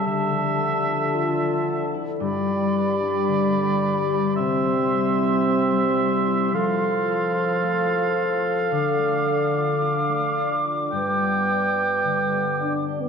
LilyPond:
<<
  \new Staff \with { instrumentName = "Flute" } { \time 4/4 \key d \dorian \tempo 4 = 110 a''2.~ a''8 r8 | b''1 | c'''1~ | c'''2.~ c'''8 r8 |
d'''1~ | d'''2.~ d'''8 r8 | }
  \new Staff \with { instrumentName = "Oboe" } { \time 4/4 \key d \dorian e''2.~ e''8 r8 | d''1 | e''1 | f''1~ |
f''2.~ f''8 r8 | g''2.~ g''8 r8 | }
  \new Staff \with { instrumentName = "Clarinet" } { \time 4/4 \key d \dorian g'2 f'4. r8 | g'1~ | g'1 | a'1~ |
a'2.~ a'8 r8 | b'2.~ b'8 r8 | }
  \new Staff \with { instrumentName = "Harp" } { \time 4/4 \key d \dorian <d c' cis' g' a' e''>8 f8 a'8 f'8 d'8 f8 a'8 e'8 | g,8 g8 b'8 d'8 d8 g8 b'8 d'8 | c8 g8 c''8 e'8 c'8 g8 c''8 e'8 | f8 f'8 a'8 c''8 a8 f'8 a'8 c''8 |
d8 a8 d''8 f'8 d'8 a8 d''8 f'8 | g,8 b8 d''8 g'8 d8 b8 d''8 g'8 | }
  \new Staff \with { instrumentName = "French horn section" } { \clef bass \time 4/4 \key d \dorian d1 | g1 | c'1 | f1 |
d1 | g2. d'8. b16 | }
>>